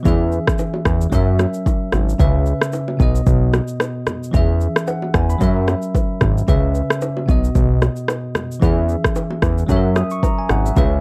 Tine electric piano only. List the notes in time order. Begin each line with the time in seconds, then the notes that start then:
0.03 E3 C#4 G#4
0.08 E5
1.10 F#3 C#4 A#4
1.15 E5
2.18 C#3 C#4 B4 E5
2.97 B2 B3 F#4
3.02 D#5
4.31 E3 C#4 G#4
4.36 E5
4.87 F#5
5.14 G#5
5.30 B5
5.38 F#3 C#4 A#4
5.43 E5
6.47 C#3 C#4 B4 E5
7.26 B2 B3 F#4
7.31 D#5
8.60 E3 C#4 G#4
8.65 E5
9.67 F#3 C#4 A4
9.72 E5
9.77 A#4
9.96 D#6
10.12 C#6
10.23 A#5
10.39 G#5
10.50 F#5
10.65 E5
10.75 C#3 C#4 B4 E5